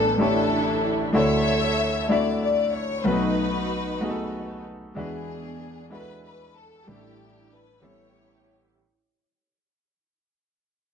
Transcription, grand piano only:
0.00 1.10 A1 medium
0.00 1.11 A2 medium
0.00 1.17 G3 medium
0.00 0.18 A3 medium
0.00 0.19 D4 medium
0.00 0.19 E4 medium
0.00 1.16 B4 medium
0.18 0.81 A3 medium
0.18 0.81 D4 soft
0.18 0.82 E4 soft
0.18 0.82 G4 medium
0.18 0.82 C#5 medium
1.13 3.02 D2 medium
1.13 3.01 D3 medium
1.13 1.76 A3 medium
1.13 1.76 D4 medium
1.13 1.77 E4 medium
1.13 1.77 F#4 medium
1.13 1.78 C#5 medium
2.08 2.72 A3 medium
2.08 2.72 D4 medium
2.08 2.73 E4 medium
2.08 2.73 F#4 medium
2.08 2.74 E5 medium
3.04 4.92 B1 medium
3.04 4.92 B2 medium
3.04 3.67 A3 medium
3.04 3.68 B3 medium
3.04 3.12 C#4 medium
3.04 3.69 F#4 medium
3.04 3.69 B4 medium
3.12 3.71 D#4 medium
4.00 4.63 A3 medium
4.00 4.63 B3 medium
4.00 4.64 D#4 medium
4.00 4.64 F#4 medium
4.00 4.09 G#4 medium
4.10 4.68 A4 medium
4.95 6.83 E2 medium
4.95 6.83 E3 medium
4.95 5.58 G#3 medium
4.95 5.58 D4 medium
4.95 5.59 E4 medium
4.95 5.59 F#4 medium
4.95 5.60 B4 medium
5.90 6.53 G#3 medium
5.90 6.54 D4 medium
5.90 6.54 E4 medium
5.90 6.54 F#4 medium
5.90 5.99 A4 medium
6.00 6.58 B4 medium
6.86 7.79 A1 medium
6.86 7.78 A2 medium
6.86 7.49 G3 medium
6.86 7.49 A3 medium
6.86 7.50 D4 medium
6.86 7.50 E4 medium
6.86 6.95 G4 medium
6.96 7.54 A4 medium
7.81 8.74 A1 medium
7.81 8.74 A2 medium
7.81 8.44 G3 medium
7.81 8.44 B3 medium
7.81 8.45 C#4 medium
7.81 8.45 E4 medium
7.81 8.45 A4 medium

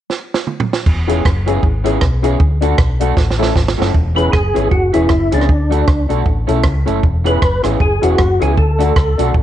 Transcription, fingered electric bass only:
0.86 1.19 E1 loud
1.26 1.58 F#1 medium
1.63 1.96 G#1 medium
2.02 2.35 B1 medium
2.40 2.73 D2 loud
2.78 3.11 B1 medium
3.17 3.50 A1 medium
3.56 3.75 G#1 medium
3.79 3.93 F#1 medium
3.95 4.27 E1 loud
4.34 4.52 F#1 medium
4.56 4.69 G#1 medium
4.72 4.91 F#1 medium
4.95 5.08 E1 medium
5.10 5.29 F#1 medium
5.33 5.47 C#2 medium
5.49 5.82 D2 medium
5.88 6.07 C#2 medium
6.10 6.23 B1 medium
6.26 6.45 A1 medium
6.49 6.65 B1 medium
6.65 6.84 C#2 medium
6.88 7.01 F#1 medium
7.03 7.36 E1 loud
7.43 7.61 F#1 medium
7.64 7.78 G#1 medium
7.80 7.99 F#1 medium
8.02 8.16 E1 medium
8.19 8.38 F#1 medium
8.41 8.55 C#2 medium
8.58 8.90 D2 loud
8.96 9.15 C#2 loud
9.19 9.32 B1 medium
9.35 9.43 A1 loud

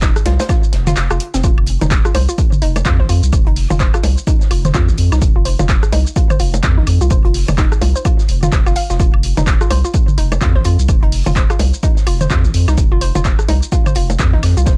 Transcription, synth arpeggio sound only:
0.02 0.07 D#4 medium
0.26 0.31 F4 medium
0.40 0.43 C5 medium
0.49 0.55 F4 medium
0.87 0.92 F4 loud
1.11 1.16 F4 medium
1.34 1.38 C4 medium
1.44 1.49 F4 medium
1.81 1.85 D#4 medium
2.05 2.09 F4 medium
2.15 2.20 C5 medium
2.29 2.32 F4 medium
2.62 2.67 D#4 medium
2.86 2.91 F4 medium
3.00 3.03 C5 medium
3.09 3.14 F4 medium
3.47 3.50 D#4 medium
3.70 3.74 F4 medium
3.80 3.85 C5 medium
3.94 3.98 F4 medium
4.27 4.33 D#4 medium
4.51 4.56 F4 medium
4.65 4.69 C5 medium
4.74 4.80 F4 medium
5.12 5.16 D#4 medium
5.36 5.39 F4 medium
5.45 5.51 C5 medium
5.59 5.63 F4 medium
5.93 5.98 D#4 medium
6.16 6.22 F4 medium
6.30 6.34 C5 medium
6.40 6.45 F4 medium
6.78 6.81 D#4 medium
7.01 7.05 F4 medium
7.11 7.16 C5 medium
7.25 7.28 F4 medium
7.58 7.63 D#4 medium
7.81 7.87 F4 medium
7.96 7.99 C5 medium
8.05 8.11 F4 medium
8.43 8.48 F4 loud
8.66 8.70 F4 loud
8.76 8.81 F5 medium
8.90 8.94 F4 medium
9.00 9.05 F4 medium
9.37 9.41 D#4 medium
9.61 9.65 F4 medium
9.70 9.76 C5 medium
9.85 9.88 F4 medium
10.18 10.23 D#4 medium
10.41 10.47 F4 medium
10.55 10.59 C5 medium
10.65 10.70 F4 medium
11.03 11.06 D#4 medium
11.26 11.30 F4 medium
11.36 11.41 C5 medium
11.50 11.54 F4 medium
11.83 11.88 D#4 medium
12.07 12.12 F4 medium
12.21 12.24 C5 medium
12.30 12.36 F4 medium
12.68 12.72 D#4 medium
12.92 12.95 F4 medium
13.01 13.07 C5 medium
13.15 13.19 F4 medium
13.48 13.54 D#4 medium
13.72 13.77 F4 medium
13.86 13.90 C5 medium
13.96 14.01 F4 medium
14.33 14.37 D#4 medium
14.57 14.61 F4 medium
14.67 14.72 C5 medium

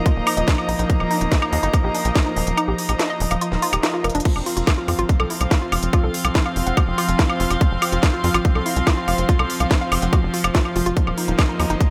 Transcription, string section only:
0.00 5.72 A#3 medium
0.00 4.25 D#4 medium
0.00 4.25 D#5 medium
0.00 5.56 A#5 medium
4.25 11.90 C4 medium
4.44 11.64 F4 medium
4.44 11.90 F5 medium
5.31 11.90 C6 medium
10.97 11.90 A#3 medium
11.25 11.90 D#5 medium
11.39 11.90 D#4 medium
11.62 11.90 A#5 medium

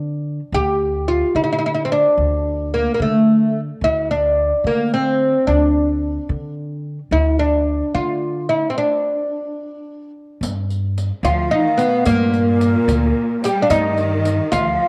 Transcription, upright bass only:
0.00 0.39 D3 loud
0.52 1.21 D2 medium
1.35 2.03 D3 medium
2.18 2.86 D2 medium
3.00 3.68 D3 medium
3.81 4.50 D2 medium
4.64 5.33 D3 medium
5.47 6.16 D2 medium
6.29 6.98 D3 medium
7.11 7.80 D2 loud
7.95 8.63 D3 medium
10.41 11.09 G2 medium
11.23 11.46 D2 loud
12.06 12.74 G2 loud
12.88 13.11 D2 loud
13.70 14.38 G2 medium
14.52 14.75 D2 loud

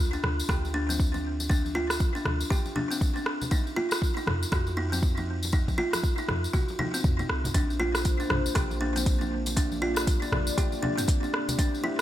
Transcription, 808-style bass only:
0.00 0.18 D2 medium
0.24 0.42 D2 medium
0.49 2.07 D2 loud
2.25 2.44 D2 medium
4.27 4.45 F2 medium
4.52 5.73 F2 loud
6.28 6.47 F2 medium
7.04 7.23 F2 medium
7.30 7.48 C2 medium
7.55 8.25 A#1 medium
8.30 8.49 A#1 medium
8.56 10.14 A#1 loud
10.32 10.51 A#1 medium

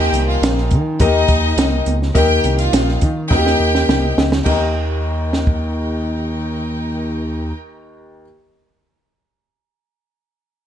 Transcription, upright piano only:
0.00 0.68 D#3 medium
0.00 0.77 A#3 medium
0.00 0.77 D#4 medium
0.00 0.77 G4 medium
0.00 0.77 A#4 medium
0.00 0.77 D#5 loud
1.00 1.92 A#3 loud
1.00 1.92 D#4 medium
1.00 1.92 G4 medium
1.00 1.92 A#4 medium
1.00 1.92 D#5 loud
2.14 2.98 D#3 medium
2.14 3.07 A#3 medium
2.14 3.07 D#4 medium
2.14 3.07 G4 medium
2.14 3.07 A#4 medium
2.14 3.07 D#5 loud
3.30 4.22 A#3 loud
3.30 4.22 D#4 medium
3.30 3.37 F#4 medium
3.30 4.22 A#4 medium
3.30 4.22 D#5 loud
3.37 4.26 G4 medium
4.44 8.23 D#2 medium
4.44 8.22 D#4 medium
4.44 8.22 G4 medium
4.44 8.23 A#4 medium
4.48 8.24 D#5 medium

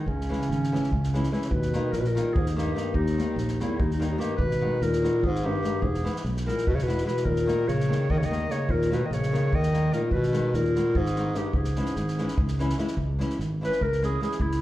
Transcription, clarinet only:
0.07 1.32 C#4 medium
1.45 1.51 C#5 soft
1.49 1.93 B4 medium
1.92 2.02 A#4 medium
2.00 2.08 B4 medium
2.07 2.35 A#4 medium
2.33 2.48 G#4 medium
2.48 2.57 G#4 soft
2.56 2.94 G4 medium
2.95 3.62 D#4 medium
3.61 3.79 E4 medium
3.78 3.92 D#4 medium
3.93 4.06 D#4 medium
4.06 4.20 D#4 medium
4.19 4.36 G4 medium
4.37 4.84 B4 medium
4.82 5.26 A#4 medium
5.24 5.46 G#4 medium
5.45 5.83 G4 medium
5.82 6.18 G#4 medium
6.47 6.69 A#4 medium
6.67 6.77 B4 medium
6.75 6.84 C#5 medium
6.83 7.05 B4 medium
7.06 7.26 B4 medium
7.25 7.70 A#4 medium
7.68 8.12 C#5 medium
8.11 8.19 D#5 medium
8.18 8.26 C#5 medium
8.25 8.53 D#5 loud
8.51 8.72 C#5 medium
8.71 8.95 A#4 medium
8.94 9.08 B4 medium
9.06 9.15 D#5 medium
9.13 9.56 C#5 medium
9.55 9.95 D#5 loud
9.93 10.11 A#4 medium
10.12 10.56 B4 medium
10.54 10.98 A#4 medium
10.97 11.39 G#4 loud
11.38 11.55 G4 medium
11.56 12.75 G#4 medium
13.64 13.84 B4 loud
13.83 14.03 A#4 medium
14.05 14.21 G#4 medium
14.23 14.43 G#4 medium
14.42 14.62 E4 medium

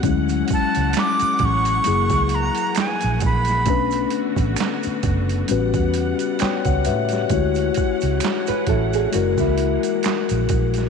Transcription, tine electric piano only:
0.03 1.81 F#3 medium
0.03 1.83 G#3 medium
0.03 1.82 C#4 medium
0.03 1.83 E4 medium
1.84 3.63 F#3 medium
1.84 3.64 A#3 medium
1.84 3.64 E4 medium
1.84 3.65 G#4 medium
3.66 5.45 A3 medium
3.66 5.45 C#4 medium
3.66 5.46 D4 medium
3.70 5.47 B4 medium
5.48 7.26 G3 medium
5.48 7.27 C#4 medium
5.48 6.39 F#4 medium
5.48 6.39 B4 medium
6.41 6.65 C#5 medium
6.41 6.65 G5 medium
6.66 6.85 C#5 medium
6.66 6.85 F#5 medium
6.86 7.11 B4 medium
6.86 7.10 E5 medium
7.12 7.55 G4 soft
7.12 7.33 C#5 medium
7.30 9.09 G#3 medium
7.30 9.09 E4 medium
7.30 9.10 F#4 medium
7.30 9.11 C#5 medium
9.12 10.89 G#3 medium
9.12 10.89 E4 medium
9.12 10.89 F#4 medium
9.12 10.89 A#4 medium

